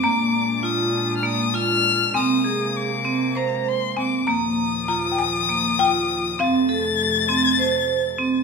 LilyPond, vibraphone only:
\new Staff \with { instrumentName = "Vibraphone" } { \time 7/8 \key aes \lydian \tempo 4 = 100 bes4 f'4 bes8 f'4 | c'8 aes'4 c'8 c''4 c'8 | bes4 f'4 bes8 f'4 | c'8 a'4 c'8 c''4 c'8 | }